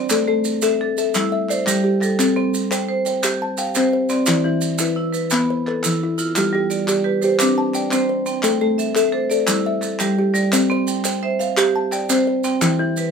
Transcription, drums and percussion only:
0.10 clap soft
0.10 maracas medium
0.45 maracas medium
0.62 clap soft
0.62 maracas medium
0.97 maracas medium
1.14 clap medium
1.14 maracas medium
1.49 clap soft
1.49 maracas medium
1.67 clap soft
1.67 maracas medium
2.01 clap soft
2.01 maracas medium
2.20 clap soft
2.20 maracas medium
2.54 maracas medium
2.71 clap soft
2.71 maracas medium
3.06 maracas medium
3.23 clap medium
3.23 maracas medium
3.58 clap soft
3.58 maracas medium
3.75 clap soft
3.75 maracas medium
4.09 clap soft
4.09 maracas medium
4.26 clap medium
4.26 maracas medium
4.61 maracas medium
4.78 clap soft
4.78 maracas medium
5.14 maracas medium
5.30 clap medium
5.30 maracas medium
5.67 clap soft
5.83 clap soft
5.83 maracas medium
6.18 maracas medium
6.36 clap soft
6.36 maracas medium
6.71 maracas medium
6.88 clap soft
6.88 maracas medium
7.22 maracas medium
7.39 clap medium
7.39 maracas medium
7.74 clap soft
7.74 maracas medium
7.91 clap soft
7.91 maracas medium
8.26 maracas medium
8.43 clap medium
8.43 maracas medium
8.79 maracas medium
8.95 clap soft
8.95 maracas medium
9.31 maracas medium
9.47 clap medium
9.47 maracas medium
9.82 clap soft
9.82 maracas medium
9.99 clap soft
9.99 maracas medium
10.35 clap soft
10.35 maracas medium
10.52 clap medium
10.52 maracas medium
10.87 maracas medium
11.05 clap soft
11.05 maracas medium
11.40 maracas medium
11.57 clap medium
11.57 maracas medium
11.92 clap soft
11.92 maracas medium
12.10 clap soft
12.10 maracas medium
12.44 clap soft
12.44 maracas medium
12.62 clap medium
12.62 maracas medium
12.97 maracas medium

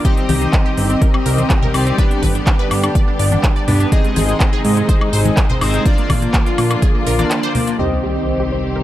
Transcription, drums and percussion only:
0.05 kick loud
0.05 closed hi-hat medium
0.17 closed hi-hat soft
0.29 open hi-hat loud
0.29 high conga medium
0.42 closed hi-hat soft
0.53 kick loud
0.53 clap loud
0.53 closed hi-hat medium
0.77 open hi-hat medium
0.90 closed hi-hat soft
1.02 kick loud
1.02 closed hi-hat medium
1.14 high woodblock medium
1.26 open hi-hat loud
1.38 closed hi-hat medium
1.38 high conga medium
1.50 kick loud
1.50 clap loud
1.50 closed hi-hat medium
1.62 low conga medium
1.74 open hi-hat medium
1.74 high woodblock medium
1.87 closed hi-hat soft
1.98 kick loud
1.98 closed hi-hat medium
2.11 closed hi-hat soft
2.23 kick medium
2.23 open hi-hat loud
2.23 high conga medium
2.35 closed hi-hat medium
2.47 kick loud
2.47 clap loud
2.47 closed hi-hat medium
2.71 open hi-hat medium
2.71 high woodblock medium
2.84 closed hi-hat medium
2.84 high woodblock medium
2.95 kick loud
2.95 closed hi-hat medium
3.19 open hi-hat loud
3.31 closed hi-hat soft
3.31 high conga medium
3.43 kick loud
3.43 clap loud
3.43 closed hi-hat medium
3.68 open hi-hat medium
3.68 low conga medium
3.80 closed hi-hat medium
3.92 kick loud
3.92 closed hi-hat medium
4.04 closed hi-hat soft
4.16 open hi-hat loud
4.16 high conga medium
4.29 closed hi-hat medium
4.40 kick loud
4.40 clap loud
4.40 closed hi-hat medium
4.65 open hi-hat medium
4.77 closed hi-hat medium
4.89 kick loud
4.89 closed hi-hat medium
5.01 high woodblock medium
5.13 open hi-hat medium
5.25 closed hi-hat medium
5.25 high conga medium
5.37 kick loud
5.37 clap loud
5.37 closed hi-hat medium
5.50 low conga medium
5.61 open hi-hat medium
5.61 high woodblock medium
5.74 closed hi-hat medium
5.86 kick loud
5.86 closed hi-hat medium
5.98 closed hi-hat soft
6.10 kick medium
6.10 open hi-hat loud
6.10 high conga medium
6.10 high woodblock medium
6.22 closed hi-hat medium
6.34 kick loud
6.34 clap loud
6.34 closed hi-hat medium
6.46 closed hi-hat soft
6.58 open hi-hat medium
6.58 high woodblock medium
6.71 closed hi-hat medium
6.71 high woodblock medium
6.82 kick loud
6.82 closed hi-hat medium
7.07 open hi-hat medium
7.19 closed hi-hat medium
7.19 high conga medium
7.31 clap loud
7.31 closed hi-hat medium
7.43 closed hi-hat soft
7.55 open hi-hat medium
7.55 low conga medium
7.67 closed hi-hat medium

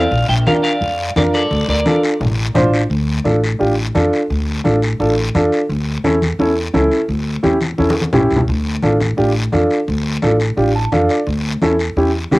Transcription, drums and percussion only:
0.12 high conga soft
0.12 long guiro medium
0.47 high conga medium
0.47 short guiro medium
0.64 short guiro medium
0.82 high conga soft
0.82 long guiro medium
1.16 high conga medium
1.16 short guiro medium
1.34 short guiro medium
1.51 high conga soft
1.51 long guiro medium
1.86 high conga medium
1.86 short guiro medium
2.04 short guiro medium
2.21 high conga soft
2.21 low conga medium
2.21 long guiro medium
2.55 high conga medium
2.55 low conga medium
2.55 short guiro medium
2.74 short guiro medium
2.91 long guiro medium
3.25 high conga medium
3.25 short guiro medium
3.44 short guiro medium
3.61 long guiro medium
3.95 high conga medium
3.95 short guiro medium
4.13 short guiro medium
4.30 long guiro medium
4.65 high conga medium
4.65 short guiro medium
4.82 short guiro medium
5.00 long guiro medium
5.35 high conga medium
5.35 short guiro medium
5.52 short guiro medium
5.70 long guiro medium
6.04 high conga medium
6.04 short guiro medium
6.22 high conga medium
6.22 short guiro medium
6.40 long guiro medium
6.74 high conga medium
6.74 short guiro medium
6.91 short guiro medium
7.09 long guiro medium
7.43 high conga medium
7.43 short guiro medium
7.61 high conga medium
7.61 short guiro medium
7.78 high conga medium
7.78 long guiro medium
7.90 high conga medium
8.01 high conga medium
8.13 low conga loud
8.13 short guiro medium
8.31 short guiro medium
8.36 low conga medium
8.48 long guiro medium
8.82 high conga medium
8.82 short guiro medium
9.00 high conga medium
9.00 short guiro medium
9.18 long guiro medium
9.52 high conga medium
9.52 short guiro medium
9.70 short guiro medium
9.88 long guiro medium
10.22 high conga medium
10.22 short guiro medium
10.40 short guiro medium
10.57 long guiro medium
10.92 high conga medium
10.92 short guiro medium
11.09 short guiro medium
11.27 long guiro medium
11.62 high conga medium
11.62 short guiro medium
11.79 short guiro medium
11.97 long guiro medium
12.32 high conga medium
12.32 short guiro medium

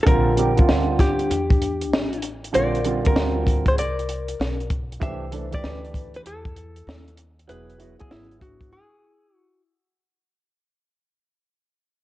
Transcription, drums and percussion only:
0.07 kick loud
0.07 closed hi-hat medium
0.37 closed hi-hat medium
0.57 kick medium
0.57 closed hi-hat soft
0.69 snare loud
0.99 kick medium
0.99 snare soft
0.99 closed hi-hat medium
1.19 closed hi-hat soft
1.31 closed hi-hat medium
1.50 kick loud
1.50 closed hi-hat soft
1.62 closed hi-hat medium
1.81 closed hi-hat medium
1.93 snare loud
2.13 closed hi-hat soft
2.22 closed hi-hat medium
2.44 closed hi-hat soft
2.54 closed hi-hat medium
2.75 closed hi-hat soft
2.84 closed hi-hat medium
3.05 kick loud
3.05 closed hi-hat medium
3.16 snare loud
3.47 kick medium
3.47 closed hi-hat medium
3.66 kick medium
3.66 closed hi-hat soft
3.78 closed hi-hat medium
3.99 closed hi-hat soft
4.09 closed hi-hat medium
4.28 closed hi-hat medium
4.41 snare loud
4.60 closed hi-hat soft
4.70 kick loud
4.70 closed hi-hat medium
4.92 closed hi-hat soft
5.02 kick loud
5.02 closed hi-hat medium
5.32 closed hi-hat medium
5.53 kick loud
5.53 closed hi-hat soft
5.64 snare loud
5.85 closed hi-hat soft
5.94 kick medium
5.94 closed hi-hat medium
6.14 closed hi-hat soft
6.26 closed hi-hat medium
6.45 kick medium
6.45 closed hi-hat soft
6.56 closed hi-hat medium
6.76 closed hi-hat medium
6.89 snare loud
7.08 closed hi-hat soft
7.17 closed hi-hat medium
7.39 closed hi-hat soft
7.49 closed hi-hat medium
7.70 closed hi-hat soft
7.80 closed hi-hat medium
8.00 kick medium
8.00 closed hi-hat medium
8.11 snare loud
8.31 closed hi-hat soft
8.41 kick medium
8.41 closed hi-hat medium
8.61 kick medium
8.61 closed hi-hat soft

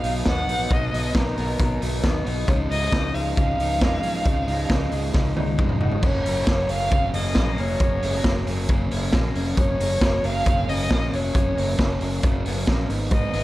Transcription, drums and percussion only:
0.04 open hi-hat medium
0.26 kick loud
0.26 snare loud
0.26 closed hi-hat medium
0.49 open hi-hat medium
0.71 kick loud
0.71 closed hi-hat medium
0.94 open hi-hat medium
1.15 kick loud
1.15 snare loud
1.15 closed hi-hat medium
1.37 open hi-hat medium
1.59 kick loud
1.59 closed hi-hat medium
1.82 open hi-hat medium
2.04 kick loud
2.04 snare medium
2.04 closed hi-hat medium
2.26 open hi-hat medium
2.48 kick loud
2.48 closed hi-hat medium
2.71 open hi-hat medium
2.92 kick loud
2.92 snare loud
2.92 closed hi-hat medium
3.15 open hi-hat medium
3.37 kick loud
3.37 closed hi-hat medium
3.60 open hi-hat medium
3.81 kick loud
3.81 snare loud
3.81 closed hi-hat medium
4.03 open hi-hat medium
4.25 kick loud
4.25 closed hi-hat medium
4.48 open hi-hat medium
4.70 kick loud
4.70 snare loud
4.70 closed hi-hat medium
4.92 open hi-hat medium
5.14 kick loud
5.14 snare medium
5.37 high tom medium
5.59 kick loud
5.59 mid tom medium
5.69 mid tom medium
5.81 floor tom medium
5.92 floor tom medium
6.03 kick loud
6.03 crash medium
6.26 open hi-hat medium
6.47 kick loud
6.47 snare loud
6.47 closed hi-hat medium
6.69 open hi-hat medium
6.91 kick loud
6.91 closed hi-hat medium
7.14 open hi-hat medium
7.35 kick loud
7.35 snare loud
7.35 closed hi-hat medium
7.58 open hi-hat medium
7.80 kick loud
7.80 closed hi-hat medium
8.03 open hi-hat medium
8.24 kick loud
8.24 snare loud
8.24 closed hi-hat medium
8.47 open hi-hat medium
8.69 kick loud
8.69 closed hi-hat medium
8.91 open hi-hat medium
9.12 kick loud
9.12 snare loud
9.12 closed hi-hat medium
9.35 open hi-hat medium
9.57 kick loud
9.57 closed hi-hat medium
9.80 open hi-hat medium
10.01 kick loud
10.01 snare loud
10.01 closed hi-hat medium
10.24 open hi-hat medium
10.46 kick loud
10.46 closed hi-hat medium
10.69 open hi-hat medium
10.91 kick loud
10.91 snare loud
10.91 closed hi-hat medium
11.13 open hi-hat medium
11.35 kick loud
11.35 closed hi-hat medium
11.58 open hi-hat medium
11.79 kick loud
11.79 snare loud
12.01 open hi-hat medium
12.23 kick loud
12.23 closed hi-hat medium
12.46 open hi-hat medium
12.67 kick loud
12.67 snare loud
12.67 closed hi-hat medium
12.90 open hi-hat medium
13.11 kick loud
13.11 closed hi-hat medium
13.33 open hi-hat medium

